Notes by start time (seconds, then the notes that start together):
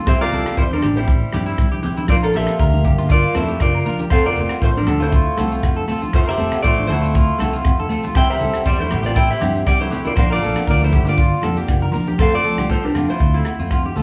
0.06 C2 E3 C4 E4 G4 C5 E5, kick, cross-stick, closed hi-hat, maracas
0.21 A#3 F4 A#4 D5, maracas
0.32 C2 E3 C4 E4 G4 A4, closed hi-hat, low conga, maracas
0.46 C4 G4, muted clean electric guitar stroke, cross-stick, closed hi-hat, maracas
0.57 E2 G3 E4 C5, kick, closed hi-hat, maracas
0.71 G3 D4 A#4, high conga, maracas
0.83 A1 G4, cross-stick, closed hi-hat, low conga, maracas
0.96 G3 E4 G4 C5, closed hi-hat, maracas
1.00 C4
1.07 muted clean electric guitar stroke, kick, closed hi-hat, maracas
1.33 G2 E3 C4 E4 G4, cross-stick, closed hi-hat, high conga, low conga, maracas
1.46 C4 E4 G4, closed hi-hat, maracas
1.58 C2, kick, cross-stick, closed hi-hat, maracas
1.72 G4, high conga, maracas
1.83 E3 C4 E4 G4, closed hi-hat, low conga, maracas
1.96 E4, closed hi-hat, high conga, maracas
2.07 A#1 F3 D4 F4 C5 D5, muted clean electric guitar stroke, kick, cross-stick, closed hi-hat, maracas
2.12 A#3
2.22 D4 A4 A#4 F5, maracas
2.32 A#1 F3 A#3 D4 F4 G4 A4, closed hi-hat, maracas
2.37 A#3 E5
2.46 A#3 D4 F4, cross-stick, closed hi-hat, maracas
2.59 D2 A#4, kick, closed hi-hat, maracas
2.72 high conga, maracas
2.84 G1 G4, kick, closed hi-hat, low conga, maracas
2.98 A#3 D4 F4, closed hi-hat
3.09 A#3 F4 D5, kick, closed hi-hat, maracas
3.23 maracas
3.35 F2 F3 A3 A#3 D4 E4 F4 A4 C5, cross-stick, closed hi-hat, high conga, low conga, maracas
3.48 A#3 D4 F4 G4, closed hi-hat
3.60 F#1 A#3 F4 D5, kick, cross-stick, closed hi-hat, maracas
3.75 A#4, maracas
3.85 F3 A#3 D4 F4 A#4, closed hi-hat, low conga, maracas
3.99 G4, closed hi-hat, high conga, maracas
4.10 F1 C4 F4 A4 C5 F5, muted clean electric guitar stroke, kick, cross-stick, closed hi-hat, low agogo, maracas
4.25 A#3 F4 A#4 D5, maracas
4.36 F1 A3 C4, closed hi-hat, low conga, maracas
4.40 F4
4.49 C4 F4, cross-stick, closed hi-hat, low agogo, maracas
4.61 A1 A3 F4 C5, kick, closed hi-hat, maracas
4.76 G3 D4 A#4, high conga, maracas
4.87 D2 A4, cross-stick, closed hi-hat, low conga, low agogo, maracas
5.00 A3 C4 E4 F4 C5, closed hi-hat, maracas
5.12 F4, kick, closed hi-hat, maracas
5.37 C2 A3 C4 F4 A4, cross-stick, closed hi-hat, high conga, low conga, low agogo, maracas
5.51 C4 F4, closed hi-hat
5.62 F1, kick, cross-stick, closed hi-hat, low agogo, maracas
5.76 A4, high conga, maracas
5.88 A3 C4 F4 A4, closed hi-hat, low conga, maracas
6.01 F4, closed hi-hat, high conga, maracas
6.13 F1 A3 F4 C5, kick, cross-stick, closed hi-hat, low agogo, maracas
6.27 C4 G4 A#4 E5, maracas
6.38 F1 A3 C4 A4, closed hi-hat, low conga, maracas
6.52 C4 F4, cross-stick, closed hi-hat, low agogo, maracas
6.63 A1 A3 F4 C5 D5, kick, closed hi-hat, maracas
6.78 high conga, maracas
6.87 D2 A3 E4 A4 C5, closed hi-hat, low conga, maracas
6.92 low agogo
7.02 C4 F4, closed hi-hat, maracas
7.15 F4, kick, closed hi-hat, maracas
7.39 C2 A3 C4 F4 A4, cross-stick, closed hi-hat, high conga, low conga, low agogo, maracas
7.52 C4 F4, closed hi-hat, maracas
7.64 F1, kick, cross-stick, closed hi-hat, low agogo, maracas
7.78 A4, high conga, maracas
7.89 A3 C4 F4 A4, closed hi-hat, low conga, maracas
8.03 F4, closed hi-hat, high conga, maracas
8.15 C2 E3 C4 E4 G4 C5 G5, kick, cross-stick, closed hi-hat, low agogo, maracas
8.28 C4 G4 A#4 E5, maracas
8.40 C2 E3 C4 E4 G4 A4, closed hi-hat, low conga, maracas
8.53 C4 E4 G4, cross-stick, closed hi-hat, low agogo, maracas
8.64 E2 G3 G4 C5 D5, kick, closed hi-hat, maracas
8.78 A3 E4 C5, high conga, maracas
8.90 A1 G4, cross-stick, closed hi-hat, low conga, low agogo, maracas
9.03 A#3 C4 E4 F4 G4 D5, closed hi-hat, maracas
9.15 E4 C5 G5, kick, closed hi-hat, maracas
9.31 C4 G4 E5
9.40 G2 E3 C4 E4 G4, cross-stick, closed hi-hat, high conga, low conga, low agogo, maracas
9.54 C4 E4 G4, closed hi-hat, maracas
9.66 C2 G3 G4 D5, kick, cross-stick, closed hi-hat, low agogo, maracas
9.80 A3 E4 G4 C5, high conga
9.91 E3 C4 E4 G4, closed hi-hat, low conga, maracas
9.95 G4
10.05 A#3 E4 F4 D5, closed hi-hat, high conga, maracas
10.16 A#1 F3 A#3 D4 A#4 C5 F5, kick, cross-stick, closed hi-hat, low agogo, maracas
10.30 A#3 F4 A#4 D5, maracas
10.42 A#1 F3 A#3 D4 A4, closed hi-hat, low conga, maracas
10.56 A#3 D4, cross-stick, closed hi-hat, low agogo, maracas
10.67 D2 A#3 F4 A#4 D5, kick, closed hi-hat, maracas
10.81 A3 E4 C5, high conga, maracas
10.93 G1 G4, kick, closed hi-hat, low conga, low agogo, maracas
11.05 A#3 D4 F4 D5, closed hi-hat, maracas
11.18 F4, kick, closed hi-hat, maracas
11.32 maracas
11.42 F2 F3 A#3 D4 A4, cross-stick, closed hi-hat, high conga, low conga, low agogo, maracas
11.56 A#3 D4 G4, closed hi-hat, maracas
11.68 F#1, kick, cross-stick, closed hi-hat, low agogo, maracas
11.82 A#4, high conga
11.92 F3 A#3 D4 A#4, closed hi-hat, low conga, maracas
12.07 G4, closed hi-hat, high conga, maracas
12.18 F1 F3 A3 C4 F4 A4 C5 F5, kick, cross-stick, closed hi-hat, low agogo, maracas
12.34 F4 D5
12.44 F3 A3 C4 A4, muted clean electric guitar stroke, closed hi-hat, maracas
12.57 C2 A3 C4 F4 G4, cross-stick, closed hi-hat, high conga, low agogo, maracas
12.69 F4 A4 C5, kick, closed hi-hat, maracas
12.83 D4 G4 A#4, maracas
12.95 F1 F3 A3 C4 F4, cross-stick, closed hi-hat, low conga, low agogo, maracas
13.08 E4 F4 C5, closed hi-hat
13.20 D2, kick, closed hi-hat, maracas
13.34 A3 C4 E4 F4
13.45 cross-stick, closed hi-hat, low agogo, maracas
13.59 F2 A3 C4 F4, closed hi-hat
13.70 F4, kick, cross-stick, closed hi-hat, low agogo, maracas
13.85 G4, high conga
13.96 D2 F3 A3 C4 F4 A4, closed hi-hat, low conga, maracas